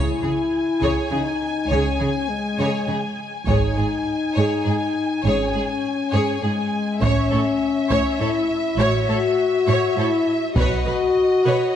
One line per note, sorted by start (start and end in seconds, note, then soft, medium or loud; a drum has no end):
0.00 0.20 C#2 soft
0.00 1.07 E4 medium
0.00 0.20 G#4 soft
0.00 0.20 C#5 soft
0.00 3.43 G#5 soft
0.22 0.31 C#3 soft
0.22 0.30 G#4 soft
0.22 0.31 G#4 soft
0.82 0.90 C#3 soft
0.82 1.10 G#4 soft
0.82 1.09 C#5 soft
0.82 taiko soft
1.11 1.20 C#3 soft
1.11 1.71 D#4 soft
1.11 1.19 G#4 soft
1.11 1.20 G#4 soft
1.71 1.98 C#2 soft
1.71 1.80 C#3 soft
1.71 2.30 C#4 medium
1.71 1.98 G#4 soft
1.71 1.98 C#5 soft
2.00 2.08 C#3 soft
2.00 2.09 G#4 soft
2.29 3.17 G#3 soft
2.59 2.67 C#3 soft
2.59 2.87 G#4 soft
2.59 2.87 C#5 soft
2.88 2.96 C#3 soft
2.88 2.97 G#4 soft
2.88 2.98 G#4 soft
3.47 3.76 G#1 soft
3.47 3.56 G#2 soft
3.47 5.21 D#4 medium
3.47 3.76 G#4 soft
3.47 3.75 C#5 soft
3.47 6.99 G#5 soft
3.47 taiko soft
3.78 3.86 G#2 soft
3.78 3.86 G#4 soft
4.36 4.45 G#2 soft
4.36 4.64 G#4 soft
4.36 4.63 C#5 soft
4.65 4.74 G#2 soft
4.65 4.73 G#4 soft
4.65 4.76 G#4 soft
5.24 5.52 G#1 soft
5.24 5.33 G#2 soft
5.24 6.40 C#4 medium
5.24 5.53 G#4 soft
5.24 5.53 C#5 soft
5.54 5.63 G#2 soft
5.54 5.62 G#4 soft
5.54 5.63 G#4 soft
6.13 6.22 G#2 soft
6.13 6.41 G#4 soft
6.13 6.41 C#5 soft
6.42 6.51 G#2 soft
6.42 7.01 G#3 medium
6.42 6.51 G#4 soft
7.01 7.30 A1 soft
7.01 7.10 A2 medium
7.01 8.20 C#4 medium
7.01 7.30 C#5 medium
7.01 7.30 C#5 soft
7.01 10.52 E5 soft
7.01 taiko soft
7.31 7.40 A2 soft
7.31 7.39 A4 soft
7.31 7.40 C#5 soft
7.90 7.99 A2 medium
7.90 8.18 C#5 medium
7.90 8.18 C#5 soft
7.90 taiko soft
8.20 8.28 A2 soft
8.20 8.79 E4 medium
8.20 8.29 A4 soft
8.20 8.29 C#5 soft
8.79 9.06 A1 medium
8.79 8.88 A2 medium
8.79 9.95 F#4 medium
8.79 9.07 C#5 medium
8.79 9.07 C#5 soft
9.09 9.17 A2 soft
9.09 9.17 A4 soft
9.09 9.17 C#5 soft
9.68 9.76 A2 medium
9.68 9.95 C#5 medium
9.68 9.96 C#5 soft
9.97 10.05 A2 soft
9.97 10.38 E4 medium
9.97 10.07 A4 soft
9.97 10.06 C#5 soft
10.55 10.84 B1 soft
10.55 10.64 B2 medium
10.55 11.73 F#4 medium
10.55 10.85 B4 soft
10.55 10.84 C#5 medium
10.55 11.76 D#5 medium
10.55 taiko soft
10.86 10.94 B2 soft
10.86 10.95 B4 soft
11.46 11.54 B2 soft
11.46 11.74 B4 soft
11.46 11.74 C#5 soft